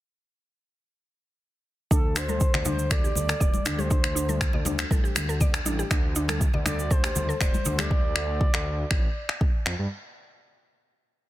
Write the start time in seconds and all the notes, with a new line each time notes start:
1.91 D2 D4 A4, kick, cabasa
2.16 D4 C5, finger snap, cabasa
2.29 A4, high conga, cabasa
2.40 kick, cabasa
2.54 D2 D5, finger snap, low conga
2.65 D4 C5, high conga, low conga, cabasa
2.79 cabasa
2.91 A4 D5, finger snap, kick, cabasa
3.04 G4, cabasa
3.15 D2, high conga, low conga, cabasa
3.29 A4, finger snap, cabasa
3.40 D1 D5, kick, cabasa
3.54 high conga, cabasa
3.66 D2 D4, finger snap, low conga, cabasa
3.79 G4 C5, high conga, cabasa
3.90 D4, kick, cabasa
4.04 finger snap, cabasa
4.15 D4, cabasa
4.29 A4, high conga, cabasa
4.41 finger snap, kick, cabasa
4.53 D2 D5, low conga
4.65 D4, high conga, low conga, cabasa
4.79 finger snap, cabasa
4.91 A1 A4, kick, high conga, cabasa
5.04 G4, cabasa
5.15 D2, finger snap, high conga, cabasa
5.29 A4, cabasa
5.40 D5, kick, low conga, cabasa
5.54 finger snap, cabasa
5.65 A1 D4, high conga, cabasa
5.79 G4, cabasa
5.91 D2 D4, finger snap, kick, cabasa
6.16 D4, cabasa
6.28 A4, finger snap, high conga, cabasa
6.41 kick, cabasa
6.54 D2 D5, low conga
6.65 D4 D5, finger snap, high conga, low conga, cabasa
6.79 cabasa
6.91 A4 C5, kick, cabasa
7.04 G4, finger snap, cabasa
7.15 D2, high conga, low conga, cabasa
7.29 A4, cabasa
7.41 D1 C5 D5, finger snap, kick, cabasa
7.54 high conga, cabasa
7.65 D2 D4, low conga, cabasa
7.78 G4 D5, finger snap, high conga, cabasa
7.91 kick
8.16 finger snap
8.41 kick
8.54 D2, finger snap
8.91 A1, finger snap, kick
9.29 finger snap
9.41 kick
9.65 F2, finger snap
9.79 G2